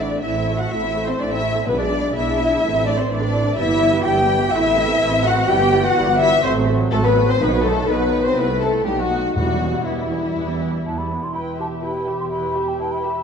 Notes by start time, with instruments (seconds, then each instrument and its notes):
Already playing: double bass section A1, french horn section A3 C4, violin section D5
0.00 viola section A3 E4, cello section D4
0.12 viola section C4 A4
0.20 double bass section A1, french horn section A3 C4, cello section E4, violin section E5
0.25 viola section A3 E4
0.36 viola section C4 A4
0.48 viola section A3 E4
0.58 viola section C4 A4, cello section F#4, violin section F#5
0.71 double bass section A1, viola section A3 E4, french horn section A3 C4, cello section E4, violin section E5
0.84 viola section C4 A4
0.95 viola section A3 E4
1.07 cello section C4, viola section C4 A4, violin section C5
1.19 double bass section A1, viola section A3 E4, cello section D4, violin section D5
1.31 viola section C4 A4, cello section E4, violin section E5
1.42 viola section A3 E4
1.55 viola section C4 A4
1.67 double bass section B1, timpani B2, french horn section G#3 D4, cello section B3, viola section B3 E4, violin section B4
1.78 viola section D4 G#4, cello section D4, violin section D5
1.91 viola section B3 E4
2.04 viola section D4 G#4
2.14 double bass section B1, french horn section G#3 D4, viola section B3 E4, cello section E4, violin section E5
2.28 viola section D4 G#4
2.39 french horn section F3, viola section B3 E4
2.52 viola section D4 G#4
2.63 double bass section A1, french horn section E3 C4, viola section A3 E4
2.75 viola section C4 A4
2.85 viola section A3 E4, cello section D4, violin section D5
2.97 cello section C4, viola section C4 A4, violin section C5
3.09 double bass section A1, viola section A3 E4, cello section D4, violin section D5
3.20 viola section C4 A4
3.33 viola section A3 E4
3.44 viola section C4 A4
3.56 double bass section G1, french horn section E3 B3, viola section G3 E4, cello section E4, violin section E5
3.68 viola section B3 G4
3.81 viola section G3 E4
3.92 viola section B3 G4
4.04 double bass section G1, french horn section E3 B3, viola section G3 E4, cello section G4, violin section G5
4.16 viola section B3 G4
4.28 viola section G3 E4
4.40 viola section B3 G4
4.52 double bass section A1, french horn section E3 C4, viola section A3 E4, cello section E4, violin section E5
4.64 viola section C4 A4
4.76 viola section A3 E4
4.88 viola section C4 A4
4.99 double bass section A1, viola section A3 E4
5.11 viola section C4 A4
5.23 viola section A3 E4, cello section F#4, violin section F#5
5.36 viola section C4 A4
5.48 double bass section G1, french horn section E3 B3, viola section G3 E4, cello section G4, violin section G5
5.60 viola section B3 G4
5.72 viola section G3 E4
5.84 viola section B3 G4, cello section F#4, violin section F#5
5.95 double bass section G1, viola section G3 E4
6.06 viola section B3 G4
6.17 viola section G3 E4, cello section E4, violin section E5
6.31 viola section B3 G4
6.42 double bass section A1, french horn section F#3 C4, viola section A3 F#4, cello section C4, violin section C5
6.55 viola section F#3 A4
6.67 viola section A3 F#4
6.80 viola section F#3 A4
6.92 double bass section A1, french horn section F#3 C4, viola section A3 F#4, cello section A3, violin section A4
7.04 viola section F#3 A4, cello section B3, violin section B4
7.16 viola section A3 F#4
7.27 viola section F#3 A4, cello section C4, violin section C5
7.39 double bass section B1, timpani B2, viola section D#3 D#4, french horn section F#3 D#4, cello section B3, violin section B4
7.51 viola section F#3 F#4
7.62 viola section D#3 D#4, cello section A3, violin section A4
7.74 viola section F#3 F#4
7.86 double bass section B1, viola section D#3 D#4, french horn section F#3 D#4, cello section B3, violin section B4
7.90 violin section B4
7.98 viola section F#3 F#4
8.10 viola section D#3 D#4
8.22 viola section F#3 F#4, cello section C4, violin section C5
8.35 double bass section C2, french horn section A3 E4, cello section B3, viola section C4 E4, violin section B4
8.47 viola section A3 C4
8.60 cello section A3, viola section C4 E4, violin section A4
8.73 viola section A3 C4
8.84 double bass section B1, cello section G3, french horn section A3 D#4, viola section B3 D#4, violin section G4
8.97 cello section F#3, viola section A3 F#4, violin section F#4
9.11 viola section B3 D#4
9.22 viola section A3 F#4
9.34 double bass section E2, timpani E2, viola section E3 B3, cello section F#3, french horn section G3 E4, violin section F#4
9.48 viola section G3 E4
9.61 viola section E3 B3
9.73 viola section G3 E4
9.85 double bass section E2, cello section E3, viola section E3 B3, french horn section G3 E4, violin section E4
9.98 viola section G3 E4
10.11 viola section E3 B3
10.23 viola section G3 E4
10.36 double bass section E2, viola section E3 B3
10.48 viola section G3 E4
10.61 viola section E3 B3
10.73 viola section G3 E4
10.86 double bass section E2, viola section E3 B3, flute A5
10.98 viola section G3 E4, flute B5
11.12 viola section E3 B3
11.23 viola section G3 E4, flute C6
11.35 double bass section E1, cello section E2, viola section E4, french horn section E4, violin section B4 G5, flute B5
11.59 violin section G4 E5, viola section G4, flute A5
11.83 viola section E4, french horn section G4, violin section B4 G5, flute B5
12.07 viola section G4, violin section G4 E5
12.20 flute C6
12.31 viola section E4, violin section B4 G5, flute B5
12.55 viola section G4, violin section G4 E5
12.68 flute G5
12.79 viola section E4, violin section B4 G5, flute A5
12.92 flute B5
13.04 viola section G4, violin section G4 E5